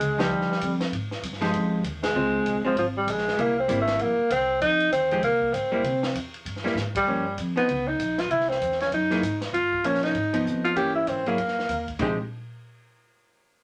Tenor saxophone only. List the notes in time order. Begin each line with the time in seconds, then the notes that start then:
Already playing: G#3
0.21 G3
2.03 G#3
2.67 F3
2.79 F3
2.97 G3
3.11 G#3
3.40 A#3
3.60 C4
3.82 A3
4.02 A#3
4.32 C4
4.62 D#4
4.93 C4
5.24 A#3
5.53 C4
6.97 G3
7.57 B3
7.88 D#4
8.20 F4
8.31 E4
8.49 C4
8.81 C#4
8.94 D#4
9.54 F4
9.86 C#4
10.04 D#4
10.65 F4
10.77 G4
10.95 E4
11.09 C4
11.28 A#3
12.01 G#3